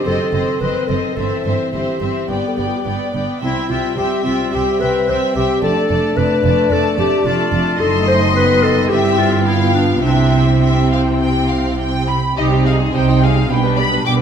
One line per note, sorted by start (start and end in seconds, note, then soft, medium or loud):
0.00 0.99 D#3 soft
0.05 0.14 F#1 soft
0.05 0.13 F#2 soft
0.05 2.30 C4 soft
0.05 0.34 C4 soft
0.05 0.62 A4 medium
0.05 0.32 C5 soft
0.05 0.32 D#5 soft
0.32 0.42 F#1 soft
0.32 0.40 F#2 soft
0.32 0.61 C4 soft
0.32 0.59 C5 soft
0.32 0.60 D#5 soft
0.60 0.70 F#1 soft
0.60 0.68 F#2 soft
0.60 0.89 C4 soft
0.60 0.88 B4 medium
0.60 0.87 C5 soft
0.60 0.87 D#5 soft
0.87 0.98 F#1 soft
0.87 0.97 F#2 soft
0.87 1.17 C4 soft
0.87 1.14 A4 soft
0.87 1.17 C5 soft
0.87 1.16 D#5 soft
1.14 1.26 G1 soft
1.14 1.26 G2 soft
1.14 2.27 E3 soft
1.14 1.45 C4 soft
1.14 1.52 A4 medium
1.14 1.44 C5 soft
1.14 1.45 E5 soft
1.45 1.53 G1 soft
1.45 1.53 G2 soft
1.45 1.73 C4 soft
1.45 1.73 C5 soft
1.45 1.73 E5 soft
1.72 1.82 G1 soft
1.72 1.82 G2 soft
1.72 2.00 C4 soft
1.72 2.49 G4 soft
1.72 2.00 C5 soft
1.72 2.00 E5 soft
2.01 2.09 G1 soft
2.01 2.09 G2 soft
2.01 2.29 C4 soft
2.01 2.29 C5 soft
2.01 2.29 E5 soft
2.28 2.38 G1 soft
2.28 2.36 G2 soft
2.28 3.15 G3 soft
2.28 2.55 B3 soft
2.28 3.14 B3 soft
2.28 2.56 D5 soft
2.28 2.56 G5 soft
2.48 2.59 A4 soft
2.57 2.66 G1 soft
2.57 2.65 G2 soft
2.57 2.85 B3 soft
2.57 2.69 G4 soft
2.57 2.84 D5 soft
2.57 2.84 G5 soft
2.67 2.78 F4 soft
2.76 2.86 G4 soft
2.85 2.95 G1 soft
2.85 2.93 G2 soft
2.85 3.14 B3 soft
2.85 3.13 D5 soft
2.85 3.12 G5 soft
3.13 3.23 G1 soft
3.13 3.22 G2 soft
3.13 3.42 B3 soft
3.13 3.42 D5 soft
3.13 3.41 G5 soft
3.41 3.51 C2 soft
3.41 3.50 C3 soft
3.41 5.60 G3 soft
3.41 3.69 C4 soft
3.41 5.60 C4 soft
3.41 3.71 E4 medium
3.41 3.69 E5 soft
3.41 3.68 G5 soft
3.70 3.78 C2 soft
3.70 3.78 C3 soft
3.70 3.98 C4 soft
3.70 3.97 F4 medium
3.70 3.97 E5 soft
3.70 3.95 G5 soft
3.97 4.07 C2 soft
3.97 4.05 C3 soft
3.97 4.25 C4 soft
3.97 4.24 G4 medium
3.97 4.23 E5 soft
3.97 4.25 G5 soft
4.24 4.34 C2 soft
4.24 4.33 C3 soft
4.24 4.53 C4 soft
4.24 4.55 F4 soft
4.24 4.50 E5 soft
4.24 4.52 G5 soft
4.52 4.62 C2 soft
4.52 4.60 C3 soft
4.52 4.81 C4 soft
4.52 4.82 G4 medium
4.52 4.79 E5 soft
4.52 4.80 G5 soft
4.80 4.90 C2 soft
4.80 4.89 C3 soft
4.80 5.08 C4 soft
4.80 5.10 B4 medium
4.80 5.07 E5 soft
4.80 5.07 G5 soft
5.08 5.18 C2 soft
5.08 5.16 C3 soft
5.08 5.36 C4 soft
5.08 5.35 C5 medium
5.08 5.34 E5 soft
5.08 5.35 G5 soft
5.36 5.44 C2 soft
5.36 5.44 C3 soft
5.36 5.63 C4 soft
5.36 5.62 G4 medium
5.36 5.62 E5 soft
5.36 5.63 G5 soft
5.62 5.72 F1 soft
5.62 5.70 F2 soft
5.62 5.89 A3 soft
5.62 7.80 A3 soft
5.62 7.76 D4 soft
5.62 6.18 A4 medium
5.62 5.89 D5 soft
5.62 5.90 A5 soft
5.89 5.99 F1 soft
5.89 5.97 F2 soft
5.89 6.16 A3 soft
5.89 6.14 D5 soft
5.89 6.17 A5 soft
6.16 6.25 F1 soft
6.16 6.24 F2 soft
6.16 6.43 A3 soft
6.16 6.74 B4 medium
6.16 6.43 D5 soft
6.16 6.45 A5 soft
6.44 6.53 F1 soft
6.44 6.52 F2 soft
6.44 6.70 A3 soft
6.44 6.68 D5 soft
6.44 6.71 A5 soft
6.69 6.79 F1 soft
6.69 6.78 F2 soft
6.69 6.97 A3 soft
6.69 6.99 A4 medium
6.69 6.95 D5 soft
6.69 6.97 A5 medium
6.96 7.07 F1 soft
6.96 7.05 F2 soft
6.96 7.24 A3 soft
6.96 7.28 G4 medium
6.96 7.23 D5 soft
6.96 7.25 A5 soft
7.24 7.34 F1 soft
7.24 7.33 F2 medium
7.24 7.52 A3 soft
7.24 7.81 F4 medium
7.24 7.49 D5 soft
7.24 7.52 A5 soft
7.50 7.61 F1 medium
7.50 7.60 F2 soft
7.50 7.78 A3 soft
7.50 7.78 D5 soft
7.50 7.79 A5 soft
7.79 8.85 F#1 medium
7.79 8.85 F#2 medium
7.79 8.30 A3 medium
7.79 9.42 C4 medium
7.79 8.87 D#4 soft
7.79 8.07 A4 medium
7.79 8.85 D#5 medium
7.79 8.86 C6 medium
8.08 8.20 C5 medium
8.35 8.89 B3 soft
8.35 8.64 B4 medium
8.63 8.91 A4 medium
8.89 10.03 G1 medium
8.89 10.03 G2 medium
8.89 9.45 C4 soft
8.89 9.45 E4 soft
8.89 9.20 G4 medium
8.89 9.45 E5 soft
8.89 9.43 G5 medium
9.18 9.46 F4 medium
9.44 10.03 B3 soft
9.44 9.73 E4 medium
9.44 10.03 F4 soft
9.44 10.02 F5 soft
9.44 10.01 G5 soft
9.74 9.87 D4 medium
10.02 12.13 C2 soft
10.02 12.12 C3 soft
10.02 12.04 C4 soft
10.02 10.60 C4 soft
10.02 10.41 D4 medium
10.02 12.08 E4 soft
10.02 10.62 E5 soft
10.02 10.61 G5 soft
10.61 12.13 C4 soft
10.61 11.76 C4 soft
10.61 10.90 E5 soft
10.61 12.14 G5 soft
10.92 11.00 F5 soft
11.22 11.50 G5 soft
11.49 11.79 F5 soft
11.80 12.08 G5 soft
12.08 12.37 B5 soft
12.37 12.87 C2 soft
12.37 12.87 C3 medium
12.37 12.90 G3 soft
12.37 12.49 D#4 soft
12.37 12.90 D#4 soft
12.37 12.63 G4 medium
12.37 12.51 G4 soft
12.37 12.45 D#5 medium
12.50 12.65 C4 soft
12.50 12.63 D#4 soft
12.64 12.78 D#4 soft
12.64 12.79 G4 soft
12.64 12.93 G#4 medium
12.64 12.75 F5 medium
12.79 12.94 C4 soft
12.79 12.92 D#4 soft
12.93 13.44 C2 medium
12.93 13.43 C3 medium
12.93 13.48 G3 soft
12.93 13.48 D#4 soft
12.93 13.07 D#4 soft
12.93 13.07 G4 soft
12.93 13.22 C5 medium
12.93 13.21 G5 medium
13.08 13.22 C4 soft
13.08 13.21 D#4 soft
13.20 13.35 D#4 soft
13.20 13.36 G4 soft
13.20 13.49 G#4 soft
13.20 13.51 F5 medium
13.36 13.50 C4 soft
13.36 13.50 D#4 soft
13.49 13.99 B1 medium
13.49 13.98 B2 soft
13.49 14.03 G3 soft
13.49 13.63 B3 soft
13.49 14.04 D4 soft
13.49 13.63 G4 soft
13.49 13.58 B4 medium
13.49 13.78 G5 medium
13.64 13.78 D4 soft
13.64 13.78 B4 soft
13.76 13.92 B3 soft
13.76 13.92 G4 soft
13.76 13.84 D5 soft
13.76 14.05 B5 medium
13.92 14.06 D4 soft
13.92 14.06 B4 soft
14.04 14.22 B1 soft
14.04 14.22 B2 medium
14.04 14.22 G3 soft
14.04 14.18 B3 soft
14.04 14.22 D4 soft
14.04 14.18 G4 soft
14.04 14.13 G5 medium
14.04 14.13 D6 medium